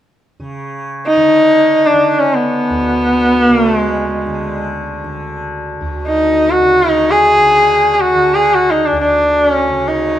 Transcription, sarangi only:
1.07 1.88 D#4 medium
1.86 2.14 D4 medium
2.14 2.21 D4 soft
2.19 2.36 C#4 medium
2.35 3.47 B3 medium
3.47 3.66 A#3 medium
3.66 3.85 A3 medium
3.85 4.61 G#3 medium
6.07 6.52 D#4 medium
6.51 6.92 F#4 medium
6.92 7.12 D#4 medium
7.11 7.93 G#4 medium
7.93 8.02 G#4 medium
8.00 8.36 F#4 medium
8.34 8.56 G#4 medium
8.54 8.72 F#4 medium
8.71 8.87 D#4 medium
8.86 9.00 D4 medium
9.01 9.49 D4 medium
9.49 9.90 C#4 medium
9.88 10.19 D#4 medium

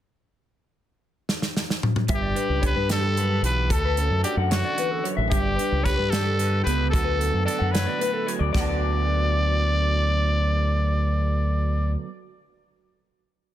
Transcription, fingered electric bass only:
2.09 2.34 G1 medium
2.49 2.74 C#2 medium
2.76 3.39 G2 medium
3.42 3.70 B1 medium
3.70 4.08 D2 loud
4.10 4.23 F#2 medium
4.37 4.62 F#2 medium
5.18 5.30 A1 medium
5.32 5.56 G1 medium
5.72 5.97 C#2 medium
5.99 6.62 G2 medium
6.66 6.93 C#2 medium
6.93 7.30 D2 medium
7.34 7.46 F#2 medium
7.61 7.85 F#2 medium
8.40 8.53 D2 medium
8.55 11.95 D2 medium

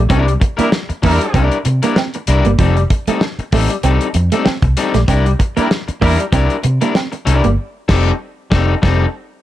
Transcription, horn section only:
0.59 0.67 G3 medium
0.59 0.67 E4 medium
0.59 0.68 A#4 loud
1.04 1.45 G3 loud
1.04 1.45 E4 loud
1.04 1.45 A#4 loud
5.57 5.66 G3 loud
5.57 5.66 E4 medium
5.57 5.66 A#4 loud
6.02 6.22 G3 loud
6.02 6.22 E4 loud
6.02 6.22 A#4 loud

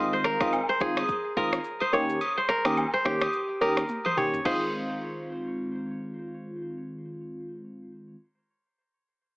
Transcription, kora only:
0.00 0.24 A#4 medium
0.00 0.13 C5 medium
0.00 0.76 D#5 medium
0.13 0.69 C5 medium
0.25 1.37 A#4 medium
0.69 1.81 C5 medium
0.81 2.17 G#4 medium
1.37 2.49 A#4 medium
1.81 1.99 C5 medium
1.93 2.43 C#5 medium
2.37 2.93 C5 medium
2.49 3.61 A#4 medium
2.94 4.05 C5 medium
3.05 4.47 G4 medium
3.61 4.89 A#4 medium
4.06 4.23 C5 medium
4.17 4.51 C#5 medium
4.45 6.10 C5 medium

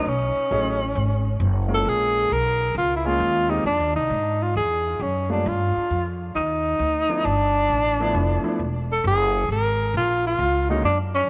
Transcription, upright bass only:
0.06 0.34 B1 medium
0.36 muted upright bass stroke soft
0.51 0.95 A1 medium
0.95 1.39 G#1 medium
1.40 1.84 F#1 loud
1.85 2.29 A#1 medium
2.30 2.74 B1 medium
2.75 3.19 C#2 medium
3.20 3.64 D#2 medium
3.64 3.80 F2 medium
3.80 3.95 D#2 medium
3.96 4.09 C2 medium
4.10 4.54 G#2 medium
4.56 4.99 E2 medium
5.00 5.43 F#2 medium
5.46 5.73 G2 medium
5.76 muted upright bass stroke soft
5.90 6.34 F2 medium
6.35 6.78 D#2 medium
6.79 7.23 D2 medium
7.25 7.68 G1 medium
7.70 8.13 A1 medium
8.15 8.42 F1 medium
8.43 muted upright bass stroke soft
8.59 9.03 E1 medium
9.04 9.47 F#1 loud
9.49 9.92 G#1 medium
9.94 10.37 A#1 medium
10.39 10.82 C#2 medium
10.84 11.27 F#2 medium

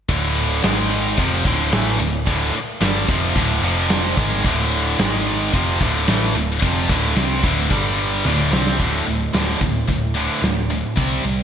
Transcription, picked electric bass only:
0.09 0.60 D1 loud
0.64 1.14 G#1 medium
1.18 1.43 F1 medium
1.45 1.71 D1 medium
1.73 1.98 A1 loud
2.00 2.25 D1 medium
2.27 2.52 D1 medium
2.81 3.07 G1 loud
3.08 3.34 F1 medium
3.35 3.61 D1 medium
3.62 4.13 F1 medium
4.17 4.43 G#1 medium
4.44 4.95 D1 medium
4.99 5.50 G#1 medium
5.54 5.79 F1 loud
5.81 6.06 D1 medium
6.08 6.34 A1 loud
6.35 6.61 D1 medium
6.63 6.88 F1 medium
6.89 7.15 D1 medium
7.17 7.42 C2 medium
7.44 7.69 D1 medium
7.71 8.22 G1 medium
8.25 8.51 D1 medium
8.53 8.78 C2 medium
8.80 8.99 D1 medium
9.08 9.27 D1 medium
9.34 9.54 D1 medium
9.61 9.81 D1 medium
9.88 10.27 D1 medium
10.42 10.81 D1 medium
10.97 11.17 C2 loud
11.24 11.43 C2 medium

